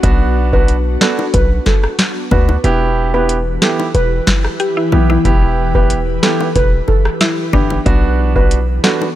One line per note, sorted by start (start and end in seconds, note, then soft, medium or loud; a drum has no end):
0.00 0.97 B1 loud
0.00 2.60 B3 medium
0.00 0.49 B3 loud
0.00 0.32 D4 medium
0.00 2.60 D4 medium
0.00 0.49 D4 medium
0.00 2.60 F#4 medium
0.00 0.49 F#4 loud
0.00 kick loud
0.00 closed hi-hat medium
0.53 0.74 B3 medium
0.53 0.75 D4 medium
0.53 0.75 F#4 medium
0.53 0.62 B4 medium
0.53 kick loud
0.68 closed hi-hat medium
1.01 1.24 B3 medium
1.01 1.24 D4 medium
1.01 1.24 F#4 medium
1.01 1.12 A4 medium
1.01 snare loud
1.19 high bongo medium
1.34 1.60 B1 loud
1.34 1.44 B4 medium
1.34 kick medium
1.34 closed hi-hat medium
1.66 1.77 A4 medium
1.66 kick medium
1.66 snare medium
1.66 high bongo medium
1.84 cross-stick medium
1.99 snare loud
1.99 closed hi-hat medium
2.31 2.57 D2 medium
2.31 2.54 B3 medium
2.31 2.54 D4 medium
2.31 2.54 F#4 medium
2.31 2.42 B4 medium
2.31 kick medium
2.31 low bongo medium
2.49 high bongo medium
2.64 3.58 E1 loud
2.64 7.82 E3 medium
2.64 3.10 B3 medium
2.64 3.10 E4 medium
2.64 7.82 E4 medium
2.64 3.10 G4 loud
2.64 7.82 G4 medium
2.64 7.82 B4 medium
2.64 closed hi-hat medium
3.14 3.35 B3 medium
3.14 3.35 E4 medium
3.14 3.36 G4 medium
3.14 3.23 B4 medium
3.29 closed hi-hat medium
3.62 3.84 B3 medium
3.62 3.85 E4 medium
3.62 3.85 G4 medium
3.62 3.72 A4 medium
3.62 snare loud
3.80 high bongo medium
3.95 4.20 E1 loud
3.95 4.42 B4 loud
3.95 closed hi-hat medium
4.27 kick medium
4.27 snare loud
4.27 high bongo medium
4.44 cross-stick medium
4.60 4.78 G4 loud
4.60 closed hi-hat medium
4.77 5.08 E4 loud
4.92 5.18 B1 loud
4.92 5.15 B3 medium
4.92 5.15 E4 medium
4.92 5.15 G4 medium
4.92 low bongo medium
5.10 5.54 E4 medium
5.10 high bongo medium
5.25 6.19 E1 loud
5.25 5.71 B3 medium
5.25 5.71 E4 medium
5.25 5.71 G4 loud
5.25 kick loud
5.25 closed hi-hat medium
5.75 5.96 B3 medium
5.75 5.96 E4 medium
5.75 5.96 G4 medium
5.75 5.84 B4 medium
5.75 kick loud
5.90 closed hi-hat medium
6.22 6.45 B3 medium
6.22 6.46 E4 medium
6.22 6.46 G4 medium
6.22 6.33 A4 medium
6.22 snare loud
6.40 high bongo medium
6.56 6.81 E1 loud
6.56 6.66 B4 medium
6.56 kick medium
6.56 closed hi-hat medium
6.88 6.99 A4 medium
6.88 kick loud
6.88 high bongo medium
7.05 cross-stick medium
7.21 7.54 E4 loud
7.21 snare loud
7.21 closed hi-hat medium
7.53 7.79 G1 loud
7.53 7.76 B3 medium
7.53 8.15 D4 loud
7.53 7.76 E4 medium
7.53 7.76 G4 medium
7.53 kick medium
7.53 low bongo medium
7.70 high bongo medium
7.86 8.80 B1 loud
7.86 8.32 B3 medium
7.86 9.15 B3 medium
7.86 8.32 D4 medium
7.86 9.15 D4 medium
7.86 8.32 F#4 loud
7.86 9.15 F#4 medium
7.86 kick loud
7.86 closed hi-hat medium
8.35 8.57 B3 medium
8.35 8.57 D4 medium
8.35 8.57 F#4 medium
8.35 8.45 B4 medium
8.35 kick loud
8.51 closed hi-hat medium
8.83 9.06 B3 medium
8.83 9.06 D4 medium
8.83 9.07 F#4 medium
8.83 8.94 A4 medium
8.83 snare loud
9.01 high bongo medium